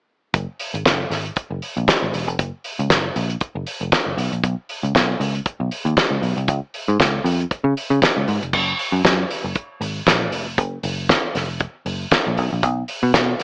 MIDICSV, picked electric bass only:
0, 0, Header, 1, 2, 480
1, 0, Start_track
1, 0, Key_signature, 6, "major"
1, 0, Tempo, 511945
1, 324, Time_signature, 4, 2, 24, 8
1, 12593, End_track
2, 0, Start_track
2, 0, Title_t, "Picked electric bass"
2, 0, Program_c, 0, 34
2, 320, Note_on_c, 0, 30, 84
2, 421, Note_off_c, 0, 30, 0
2, 693, Note_on_c, 0, 32, 81
2, 774, Note_off_c, 0, 32, 0
2, 803, Note_on_c, 0, 30, 76
2, 981, Note_off_c, 0, 30, 0
2, 1034, Note_on_c, 0, 32, 85
2, 1215, Note_off_c, 0, 32, 0
2, 1411, Note_on_c, 0, 30, 80
2, 1492, Note_off_c, 0, 30, 0
2, 1657, Note_on_c, 0, 34, 77
2, 1735, Note_off_c, 0, 34, 0
2, 1897, Note_on_c, 0, 32, 73
2, 1976, Note_off_c, 0, 32, 0
2, 2001, Note_on_c, 0, 28, 78
2, 2130, Note_off_c, 0, 28, 0
2, 2130, Note_on_c, 0, 29, 69
2, 2211, Note_off_c, 0, 29, 0
2, 2241, Note_on_c, 0, 30, 88
2, 2341, Note_off_c, 0, 30, 0
2, 2619, Note_on_c, 0, 37, 89
2, 2696, Note_off_c, 0, 37, 0
2, 2726, Note_on_c, 0, 30, 72
2, 2902, Note_off_c, 0, 30, 0
2, 2964, Note_on_c, 0, 34, 94
2, 3141, Note_off_c, 0, 34, 0
2, 3332, Note_on_c, 0, 30, 82
2, 3412, Note_off_c, 0, 30, 0
2, 3573, Note_on_c, 0, 29, 87
2, 3652, Note_off_c, 0, 29, 0
2, 3809, Note_on_c, 0, 30, 78
2, 3890, Note_off_c, 0, 30, 0
2, 3915, Note_on_c, 0, 35, 98
2, 4017, Note_off_c, 0, 35, 0
2, 4050, Note_on_c, 0, 34, 78
2, 4130, Note_off_c, 0, 34, 0
2, 4160, Note_on_c, 0, 35, 92
2, 4260, Note_off_c, 0, 35, 0
2, 4532, Note_on_c, 0, 37, 84
2, 4611, Note_off_c, 0, 37, 0
2, 4641, Note_on_c, 0, 35, 68
2, 4819, Note_off_c, 0, 35, 0
2, 4875, Note_on_c, 0, 37, 88
2, 5055, Note_off_c, 0, 37, 0
2, 5251, Note_on_c, 0, 35, 78
2, 5330, Note_off_c, 0, 35, 0
2, 5486, Note_on_c, 0, 39, 86
2, 5568, Note_off_c, 0, 39, 0
2, 5724, Note_on_c, 0, 37, 73
2, 5806, Note_off_c, 0, 37, 0
2, 5835, Note_on_c, 0, 35, 94
2, 5936, Note_off_c, 0, 35, 0
2, 5970, Note_on_c, 0, 36, 76
2, 6078, Note_off_c, 0, 36, 0
2, 6078, Note_on_c, 0, 37, 85
2, 6179, Note_off_c, 0, 37, 0
2, 6454, Note_on_c, 0, 44, 85
2, 6533, Note_off_c, 0, 44, 0
2, 6559, Note_on_c, 0, 37, 75
2, 6737, Note_off_c, 0, 37, 0
2, 6793, Note_on_c, 0, 41, 90
2, 6973, Note_off_c, 0, 41, 0
2, 7164, Note_on_c, 0, 49, 99
2, 7246, Note_off_c, 0, 49, 0
2, 7410, Note_on_c, 0, 49, 104
2, 7490, Note_off_c, 0, 49, 0
2, 7657, Note_on_c, 0, 37, 86
2, 7735, Note_off_c, 0, 37, 0
2, 7766, Note_on_c, 0, 44, 98
2, 7863, Note_off_c, 0, 44, 0
2, 7902, Note_on_c, 0, 29, 83
2, 7977, Note_off_c, 0, 29, 0
2, 8001, Note_on_c, 0, 30, 99
2, 8179, Note_off_c, 0, 30, 0
2, 8367, Note_on_c, 0, 42, 91
2, 8448, Note_off_c, 0, 42, 0
2, 8483, Note_on_c, 0, 42, 91
2, 8660, Note_off_c, 0, 42, 0
2, 8855, Note_on_c, 0, 30, 83
2, 8933, Note_off_c, 0, 30, 0
2, 9195, Note_on_c, 0, 32, 99
2, 9375, Note_off_c, 0, 32, 0
2, 9440, Note_on_c, 0, 34, 84
2, 9677, Note_off_c, 0, 34, 0
2, 9677, Note_on_c, 0, 29, 98
2, 9920, Note_off_c, 0, 29, 0
2, 9920, Note_on_c, 0, 30, 89
2, 10098, Note_off_c, 0, 30, 0
2, 10159, Note_on_c, 0, 30, 94
2, 10438, Note_off_c, 0, 30, 0
2, 10644, Note_on_c, 0, 29, 82
2, 10921, Note_off_c, 0, 29, 0
2, 11119, Note_on_c, 0, 30, 91
2, 11298, Note_off_c, 0, 30, 0
2, 11502, Note_on_c, 0, 34, 91
2, 11608, Note_off_c, 0, 34, 0
2, 11608, Note_on_c, 0, 35, 106
2, 11706, Note_off_c, 0, 35, 0
2, 11745, Note_on_c, 0, 34, 79
2, 11846, Note_off_c, 0, 34, 0
2, 11846, Note_on_c, 0, 35, 84
2, 12023, Note_off_c, 0, 35, 0
2, 12215, Note_on_c, 0, 47, 100
2, 12294, Note_off_c, 0, 47, 0
2, 12322, Note_on_c, 0, 47, 78
2, 12500, Note_off_c, 0, 47, 0
2, 12593, End_track
0, 0, End_of_file